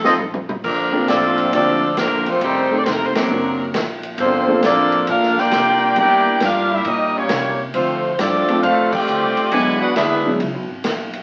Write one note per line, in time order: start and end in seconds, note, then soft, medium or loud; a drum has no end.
0.00 0.44 F2 medium
0.00 0.14 C3 medium
0.00 0.14 D#3 medium
0.00 0.14 A3 medium
0.00 0.15 A4 medium
0.04 0.17 A3 soft
0.04 0.18 C4 soft
0.04 0.18 D#4 soft
0.04 0.14 F4 medium
0.04 0.18 F4 medium
0.04 0.14 A4 medium
0.04 0.14 C5 medium
0.04 0.14 D#5 medium
0.04 snare medium
0.19 mid tom medium
0.34 mid tom medium
0.49 mid tom medium
0.63 1.07 A#1 medium
0.63 1.04 D3 medium
0.63 1.05 F3 medium
0.63 1.05 A#3 medium
0.63 1.06 C4 medium
0.63 1.06 D4 medium
0.63 1.06 A#4 medium
0.63 kick medium
0.63 crash medium
0.93 1.49 A#3 medium
0.93 1.50 C4 medium
0.93 1.50 D4 medium
0.93 1.50 F4 medium
0.93 1.50 A4 medium
0.93 kick medium
1.08 1.51 A1 medium
1.08 1.51 F3 medium
1.08 1.51 A3 medium
1.08 1.53 C4 loud
1.08 1.50 D4 medium
1.08 1.53 F4 medium
1.08 1.53 A4 medium
1.08 1.53 D5 loud
1.08 kick soft
1.08 snare medium
1.08 hi-hat pedal medium
1.08 ride medium
1.38 ride soft
1.52 1.96 D2 medium
1.52 1.93 F3 medium
1.52 1.94 A3 medium
1.52 1.79 A#3 soft
1.52 1.79 C4 soft
1.52 1.95 C4 medium
1.52 1.93 D4 medium
1.52 1.79 D4 soft
1.52 1.79 F4 soft
1.52 1.95 F4 medium
1.52 1.80 G4 medium
1.52 1.95 A4 medium
1.52 1.95 D5 medium
1.52 kick soft
1.52 ride medium
1.97 2.40 A#1 medium
1.97 2.25 D3 medium
1.97 2.25 F3 medium
1.97 2.25 A#3 medium
1.97 2.26 C4 medium
1.97 2.25 D4 medium
1.97 2.26 A#4 medium
1.97 kick soft
1.97 snare medium
1.97 hi-hat pedal medium
1.97 ride medium
2.26 2.41 F3 medium
2.26 2.41 A3 medium
2.26 2.42 A3 medium
2.26 2.42 C4 medium
2.26 2.42 D4 medium
2.26 2.42 F4 medium
2.26 2.42 C5 medium
2.26 ride soft
2.41 2.84 A1 medium
2.41 2.75 D#3 medium
2.41 2.75 G3 medium
2.41 2.75 A3 medium
2.41 2.75 C4 medium
2.41 2.75 D#4 medium
2.41 2.75 G4 medium
2.41 2.75 C5 medium
2.41 kick soft
2.41 ride medium
2.71 3.27 A3 medium
2.71 3.27 C4 soft
2.71 3.28 D#4 medium
2.71 3.28 G4 soft
2.71 3.28 A4 medium
2.77 2.83 D5 medium
2.84 3.13 F1 medium
2.84 2.92 C5 medium
2.84 kick soft
2.84 snare medium
2.84 hi-hat pedal soft
2.84 ride medium
2.92 3.04 A#4 medium
3.05 3.16 C5 medium
3.14 3.71 C3 medium
3.14 3.71 F#3 medium
3.14 3.71 A#3 medium
3.14 3.71 C4 medium
3.14 3.71 D4 medium
3.14 3.71 A#4 medium
3.14 muted upright bass stroke soft
3.14 snare medium
3.14 ride medium
3.29 3.73 F#1 medium
3.29 3.57 A#3 medium
3.29 3.57 C4 soft
3.29 3.57 D4 soft
3.29 3.57 F#4 medium
3.29 3.57 A#4 medium
3.74 4.17 A#1 medium
3.74 kick soft
3.74 snare medium
3.74 hi-hat pedal medium
3.74 ride medium
4.03 ride soft
4.18 4.61 G1 medium
4.18 4.61 D3 medium
4.18 4.61 F3 medium
4.18 4.60 A#3 medium
4.18 4.61 C4 medium
4.18 4.60 F4 medium
4.18 4.60 A4 medium
4.18 4.61 C5 medium
4.18 kick soft
4.18 ride medium
4.48 5.04 A#3 medium
4.48 5.05 C4 medium
4.48 5.05 D4 medium
4.48 5.05 F4 medium
4.48 5.05 A4 medium
4.62 5.06 A1 medium
4.62 5.05 F3 medium
4.62 5.05 A#3 medium
4.62 5.06 A#3 medium
4.62 5.05 D4 medium
4.62 5.06 F4 medium
4.62 5.06 A4 medium
4.62 5.06 D5 loud
4.62 kick soft
4.62 snare medium
4.62 hi-hat pedal medium
4.62 ride medium
4.92 ride soft
5.07 5.50 A#1 medium
5.07 5.38 A#3 medium
5.07 5.38 D4 medium
5.07 5.39 F4 medium
5.07 5.38 A4 medium
5.07 5.39 A#4 medium
5.07 5.39 F5 loud
5.07 kick soft
5.07 ride medium
5.23 snare soft
5.37 5.97 A#3 medium
5.37 5.97 D4 medium
5.37 5.98 F4 medium
5.37 5.97 G4 medium
5.37 5.98 A#4 medium
5.37 5.98 D5 loud
5.37 5.98 G5 loud
5.37 snare soft
5.51 5.95 C2 medium
5.51 kick soft
5.51 snare medium
5.51 hi-hat pedal medium
5.51 ride medium
5.96 6.39 E2 medium
5.96 6.23 G3 medium
5.96 6.23 A#3 soft
5.96 6.39 A#3 medium
5.96 6.23 D4 soft
5.96 6.39 D4 medium
5.96 6.24 E4 medium
5.96 6.24 G4 medium
5.96 6.39 G4 loud
5.96 kick soft
5.96 ride medium
6.00 6.40 E4 medium
6.00 6.40 A#4 medium
6.00 6.40 D5 medium
6.00 6.40 G5 loud
6.40 6.84 G2 medium
6.40 6.71 F4 medium
6.40 kick soft
6.40 snare medium
6.40 hi-hat pedal medium
6.40 ride medium
6.45 6.72 D4 medium
6.45 6.72 G4 medium
6.45 6.72 A#4 medium
6.45 6.72 F5 medium
6.71 6.86 G3 medium
6.71 6.86 A#3 medium
6.71 6.87 D4 medium
6.71 6.86 E4 medium
6.71 6.87 G4 medium
6.71 6.87 A#4 medium
6.71 6.87 E5 medium
6.85 7.28 A#2 medium
6.85 7.16 G3 medium
6.85 7.15 A#3 medium
6.85 7.16 D#4 medium
6.85 7.16 D#5 medium
6.85 kick soft
6.85 ride medium
6.89 7.17 C#4 medium
6.89 7.17 G4 medium
6.89 7.17 A#4 medium
7.16 7.60 G3 medium
7.16 7.60 A#3 medium
7.16 7.60 C#4 medium
7.16 7.61 F4 medium
7.16 7.61 G4 medium
7.16 7.60 C#5 medium
7.29 7.72 C3 medium
7.29 kick soft
7.29 snare medium
7.29 hi-hat pedal medium
7.29 ride medium
7.74 8.17 D3 medium
7.74 8.11 F3 medium
7.74 8.11 A3 medium
7.74 8.11 C4 medium
7.74 8.11 D4 medium
7.74 8.11 F4 medium
7.74 8.11 C5 medium
7.74 kick soft
7.74 ride medium
8.15 8.46 G2 medium
8.15 8.63 F3 medium
8.15 8.63 D4 medium
8.15 8.19 C5 medium
8.19 8.62 A3 medium
8.19 8.63 C4 medium
8.19 8.63 F4 medium
8.19 8.61 A4 medium
8.19 8.63 D5 medium
8.19 kick soft
8.19 snare medium
8.19 hi-hat pedal medium
8.19 ride medium
8.48 8.62 F3 medium
8.48 8.62 A3 medium
8.48 8.62 C4 medium
8.48 8.62 D4 medium
8.48 8.62 F4 medium
8.48 ride medium
8.62 9.06 F2 medium
8.62 8.90 A3 medium
8.62 8.91 C4 medium
8.62 8.90 D4 medium
8.62 8.91 F4 medium
8.62 8.90 A4 medium
8.62 8.90 C5 medium
8.62 8.90 F5 medium
8.62 kick soft
8.62 ride medium
8.92 9.52 A3 medium
8.92 9.52 C4 medium
8.92 9.51 F4 medium
8.92 9.52 G4 medium
8.92 9.51 C5 medium
8.92 9.50 D5 medium
8.92 9.52 G5 loud
8.92 kick medium
8.92 crash medium
9.06 9.21 D2 medium
9.06 hi-hat pedal medium
9.21 9.36 C2 medium
9.37 ride soft
9.51 9.94 E2 medium
9.51 9.80 B2 medium
9.51 9.79 D3 medium
9.51 9.78 F#3 medium
9.51 9.78 G#3 medium
9.51 9.79 G#3 medium
9.51 9.78 B3 medium
9.51 9.79 D4 medium
9.51 9.78 E4 medium
9.51 9.79 F#4 medium
9.51 9.79 B4 loud
9.51 9.79 D5 medium
9.51 9.79 G#5 loud
9.51 kick soft
9.51 ride medium
9.81 9.95 B3 medium
9.81 9.95 D4 medium
9.81 9.95 F#4 medium
9.81 9.95 G#4 medium
9.81 9.94 B4 medium
9.81 9.95 F#5 loud
9.96 10.39 D2 medium
9.96 10.37 G#3 medium
9.96 10.37 B3 medium
9.96 10.37 D4 medium
9.96 10.37 E4 medium
9.96 10.38 G#4 medium
9.96 10.37 B4 medium
9.96 10.37 E5 medium
9.96 kick soft
9.96 snare medium
9.96 hi-hat pedal medium
9.96 ride medium
10.25 10.38 F#3 medium
10.25 10.38 G#3 medium
10.25 10.38 B3 medium
10.25 10.39 D4 medium
10.25 10.39 E4 medium
10.40 10.54 C#2 loud
10.40 kick soft
10.40 ride medium
10.54 10.68 B1 medium
10.69 10.83 G#1 medium
10.84 11.23 B1 medium
10.84 kick soft
10.84 snare medium
10.84 hi-hat pedal medium
10.84 ride medium
11.13 ride soft